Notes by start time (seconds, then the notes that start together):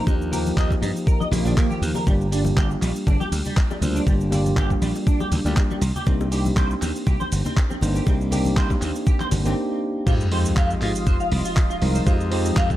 0.06 D#2 F3 A#3 D4 D#4 G4, kick, high bongo, cabasa, shaker
0.21 cabasa, shaker
0.31 F3 A#3 D#4 G4 A#4, open hi-hat, high bongo, low conga, shaker
0.46 high conga, cabasa, shaker
0.57 D#2 D#5, kick, clap, cabasa, shaker
0.71 kick, high bongo, cabasa, shaker
0.82 G2 D#4, open hi-hat, high conga, shaker
0.96 high bongo, cabasa, shaker
1.07 A#4, kick, cabasa, shaker
1.20 D#5, high conga, cabasa, shaker
1.31 A#1 A#3, open hi-hat, high bongo, low conga, shaker
1.44 A#1 D#3 F3 A#3 D4 G4, cabasa, shaker
1.56 A#3, kick, clap, high bongo, cabasa, shaker
1.70 G4, high conga, cabasa, shaker
1.82 D#2, open hi-hat, shaker
1.94 A#4, high bongo, low conga, cabasa, shaker
2.06 G1 G3 A#3 D4 F4 G4, kick, high bongo, cabasa, shaker
2.21 cabasa, shaker
2.31 G3 A#3 D4 F4 G4, open hi-hat, shaker
2.45 high bongo, high conga, cabasa, shaker
2.57 G1 G4, kick, clap, cabasa, shaker
2.71 high bongo, cabasa, shaker
2.82 A#1 G3, clap, open hi-hat, high conga, shaker
2.95 cabasa, shaker
3.07 G1 D4, kick, high bongo, cabasa, shaker
3.20 G4, high conga, cabasa, shaker
3.32 D2, open hi-hat, high bongo, shaker
3.45 G3, low conga, cabasa, shaker
3.57 kick, clap, cabasa, shaker
3.70 G3, high bongo, high conga, cabasa, shaker
3.81 D2 G3 A#3 D4 F4 C5, open hi-hat, low conga, shaker
3.95 D4, high bongo, cabasa, shaker
4.07 G1 G3 A#3 D4 F4 G4, kick, cabasa, shaker
4.20 cabasa, shaker
4.30 G3 A#3 D4 F4 G4, open hi-hat, high bongo, low conga, shaker
4.46 high conga, cabasa, shaker
4.57 G1 G4, kick, clap, high bongo, cabasa, shaker
4.70 kick, cabasa, shaker
4.81 A#1 G3, open hi-hat, high conga, shaker
4.95 high bongo, cabasa, shaker
5.07 D4, kick, cabasa, shaker
5.20 G4, high bongo, high conga, cabasa, shaker
5.32 D2, open hi-hat, low conga, shaker
5.45 D2 G3 A#3 D4 F4 G4, cabasa, shaker
5.56 kick, clap, high bongo, cabasa, shaker
5.70 G3, high conga, cabasa, shaker
5.81 C2, open hi-hat, high bongo, shaker
5.96 G4, low conga, cabasa, shaker
6.06 C2 A#3 C4 D4 D#4 G4, kick, cabasa, shaker
6.21 high bongo, cabasa, shaker
6.31 A#3 C4 D4 D#4 G4, open hi-hat, shaker
6.45 high bongo, high conga, cabasa, shaker
6.57 C2 C5, kick, clap, cabasa, shaker
6.71 cabasa, shaker
6.82 D#2 C4, clap, open hi-hat, high bongo, high conga, shaker
6.96 cabasa, shaker
7.06 C2 G4, kick, high bongo, cabasa, shaker
7.20 C5, high conga, cabasa, shaker
7.32 G1, open hi-hat, shaker
7.45 C4, high bongo, low conga, cabasa, shaker
7.57 kick, clap, cabasa, shaker
7.70 C4, high bongo, high conga, cabasa, shaker
7.81 G1 A#3 C4 D4 D#4 C5, open hi-hat, low conga, shaker
7.95 G4, cabasa, shaker
8.06 C2 A#3 C4 D4 D#4 G4, kick, high bongo, cabasa, shaker
8.21 cabasa, shaker
8.31 A#3 C4 D4 D#4 G4, open hi-hat, high bongo, low conga, shaker
8.45 high conga, cabasa, shaker
8.57 C2 C5, kick, clap, cabasa, shaker
8.70 kick, high bongo, cabasa, shaker
8.82 D#2 C4, clap, open hi-hat, high conga, shaker
8.95 high bongo, cabasa, shaker
9.06 G4, kick, cabasa, shaker
9.20 C5, clap, high conga, cabasa, shaker
9.31 G1, open hi-hat, high bongo, low conga, shaker
9.45 G1 A#3 C4 D4 D#4 G4, cabasa, shaker
10.06 F2 F3 G#3 C4 D#4 F4 G4 D#5, kick, crash, sub drop, shaker
10.20 shaker
10.31 F3 G#3 C4 D#4 G4 C5, open hi-hat
10.45 shaker
10.57 F2 F5, kick, clap, shaker
10.70 shaker
10.82 G#2 F4, clap, open hi-hat
10.95 shaker
11.07 F2 C5, kick, shaker
11.20 F5, shaker
11.32 C2, open hi-hat
11.45 F4, shaker
11.57 kick, clap, shaker
11.70 F4, shaker
11.81 C2 F3 G#3 C4 D#4 A#4, open hi-hat
11.95 C5, shaker
12.06 F2 F3 G#3 C4 D#4 F4 G4, kick, shaker
12.20 shaker
12.31 F3 G#3 C4 D#4 G4 C5, open hi-hat
12.45 shaker
12.56 F2 F5, kick, clap, shaker
12.70 kick, shaker